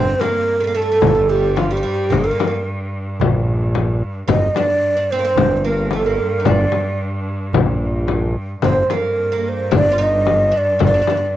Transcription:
Already playing: G1 G2 C4 C5
0.20 A#3 A#4, darbuka tek, frame drum
0.60 A3 A#3
0.67 A#3
0.74 A3 A4
0.82 A3
0.92 A3
1.01 G1 A3, frame drum, darbuka dum
1.07 A3
1.15 A3
1.29 G3 G4
1.56 F3 F4, darbuka tek, frame drum
1.71 G3 G4
1.77 F3
1.83 G3
2.10 G1 A#3, darbuka dum, frame drum
2.14 A#3 A#4
2.24 A#3
2.31 A#3
2.38 A#3, darbuka tek, frame drum
2.47 A#3
3.20 A#1, darbuka dum, frame drum
3.75 darbuka tek, frame drum
4.28 G1 G2 D#4 D#5, darbuka dum, frame drum
4.55 D4 D5, darbuka tek, frame drum
4.97 D4
5.11 C4 C5
5.19 A#3
5.25 C4
5.36 G1, darbuka dum, frame drum
5.57 C5
5.64 A#3 A#4
5.91 A3 A4, darbuka tek, frame drum
6.05 A#3 A#4
6.40 D#4
6.45 G1 D4 D5, darbuka dum, frame drum
6.72 darbuka tek, frame drum
6.98 darbuka ka
7.53 A#1, darbuka dum, frame drum
8.08 darbuka tek, frame drum
8.62 G1 G2 C4 C5, frame drum, darbuka dum
8.83 C5
8.90 A#3 A#4, darbuka tek, frame drum
9.32 A#3
9.49 C5
9.71 G1 D4, frame drum, darbuka dum
9.75 D5
9.92 F4
9.98 D#4
10.02 D#5
10.26 darbuka tek, frame drum
10.52 D4
10.57 D5
10.79 G1 D4, frame drum, darbuka dum
10.84 D4 D5
10.94 D4
11.02 D4
11.07 D4, darbuka tek, frame drum
11.17 D4

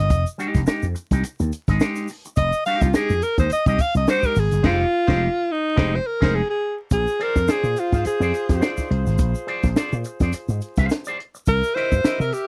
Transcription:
Already playing: G1
0.00 D#5
0.10 F1, kick, closed hi-hat, shaker
0.26 closed hi-hat, shaker
0.38 G#3 D#4 G4, closed hi-hat, shaker
0.54 F1, kick, snare, closed hi-hat, shaker
0.67 G#3 D#4 G4, muted slap bass stroke, snare, shaker
0.82 F2, closed hi-hat, shaker
0.95 muted clean electric guitar stroke, closed hi-hat, shaker
1.11 C2 G#3 D#4 G4, kick, snare, closed hi-hat, shaker
1.23 muted slap bass stroke, muted clean electric guitar stroke, closed hi-hat, shaker
1.40 D#2, muted clean electric guitar stroke, closed hi-hat, shaker
1.52 closed hi-hat, shaker
1.68 G#1 G#3 D#4 G#4, kick, snare, closed hi-hat, shaker
1.80 G#3 D#4 G4, snare, shaker
1.96 snare, closed hi-hat, shaker
2.08 muted clean electric guitar stroke, open hi-hat, shaker
2.25 muted clean electric guitar stroke, closed hi-hat, shaker
2.36 F1 D#5, kick, closed hi-hat, shaker
2.52 closed hi-hat, shaker
2.66 G#3 D#4 G4 F5, closed hi-hat, shaker
2.81 C2 F4, kick, snare, closed hi-hat, shaker
2.94 G#3 D#4 G4 G#4, snare, shaker
3.09 F2, shaker
3.22 A#4, muted clean electric guitar stroke, closed hi-hat, shaker
3.38 D#2 G#3 D#4 G#4 C5, kick, snare, closed hi-hat, shaker
3.50 D#5, muted slap bass stroke, muted clean electric guitar stroke, closed hi-hat, shaker
3.66 C2 G#3 D#4 G4 D#5, kick, closed hi-hat, shaker
3.78 F5, muted clean electric guitar stroke, kick, closed hi-hat, shaker
3.95 C2 D#5, muted clean electric guitar stroke, snare, closed hi-hat, shaker
4.08 G3 D4 G4 C5, snare, shaker
4.19 G#3 D#4, kick, shaker
4.23 A#4, snare
4.36 G#1 G#4, muted clean electric guitar stroke, open hi-hat, shaker
4.51 G1, muted clean electric guitar stroke, snare, closed hi-hat, shaker
4.63 F1 G#3 C4 D#4 F4 G4 G#4 C5, kick, snare, crash
5.07 F1 G#3 C4 D#4 G4 G#4 C5, kick, snare
5.52 D#4
5.76 F1 G#3 C4 D#4 G4 G#4 C5, kick, snare
5.96 C5
6.06 A#4
6.21 F1 G#3 C4 D#4 G#4 C5, kick, snare, crash
6.35 G#4
6.50 G#4
6.91 A#1 F4 G#4 C5, kick, closed hi-hat, shaker
7.07 shaker
7.19 G#4 A#4 C5 D5, closed hi-hat
7.36 F2, kick, snare, shaker
7.48 G#4 C5 D5, muted slap bass stroke, snare, closed hi-hat, shaker
7.63 A#2, shaker
7.76 F4, muted clean electric guitar stroke, closed hi-hat, shaker
7.92 G#2 G#4 C5 F5, kick, snare, shaker
8.05 G#4, muted clean electric guitar stroke, muted slap bass stroke, closed hi-hat, shaker
8.20 F2 G#4 C5 D5, shaker
8.34 muted clean electric guitar stroke, closed hi-hat, shaker
8.49 F2, muted clean electric guitar stroke, kick, snare, closed hi-hat, shaker
8.60 G#4 C5 D5, snare, closed hi-hat, shaker
8.77 kick, snare, shaker
8.90 C2, muted clean electric guitar stroke, closed hi-hat
9.05 G#1, muted clean electric guitar stroke, snare, shaker
9.18 A#1, kick, closed hi-hat, shaker
9.35 shaker
9.47 G#4 C5 D5, closed hi-hat
9.63 A#1, kick, snare, shaker
9.76 G#4 C5 D5, muted slap bass stroke, snare, closed hi-hat, shaker
9.92 A#2, shaker
10.04 muted clean electric guitar stroke, closed hi-hat, shaker
10.20 F2 G#4 C5 D5, kick, snare, closed hi-hat, shaker
10.33 muted clean electric guitar stroke, muted slap bass stroke, closed hi-hat, shaker
10.48 G#2, muted clean electric guitar stroke, shaker
10.61 closed hi-hat, shaker
10.76 C2 G#4 C5 F5, kick, snare, closed hi-hat, shaker
10.90 muted clean electric guitar stroke, snare, closed hi-hat, shaker
11.05 G#4 C5 D5, shaker
11.19 muted clean electric guitar stroke, closed hi-hat
11.35 muted clean electric guitar stroke, shaker
11.46 C2 G4 A#4 E5, kick, closed hi-hat, shaker
11.63 shaker
11.75 E4 A#4 C5 D#5, closed hi-hat
11.92 G2, kick, shaker
12.04 E4 A#4 D#5, muted slap bass stroke, snare, closed hi-hat, shaker
12.20 C3 A#4, shaker
12.32 G4, muted clean electric guitar stroke, closed hi-hat, shaker

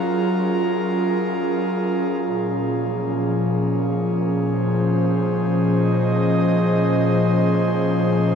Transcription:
Already playing: F#3 C#4 F4 G#4 A#4
2.25 A#2
2.69 F3
4.31 C5
5.50 D#5

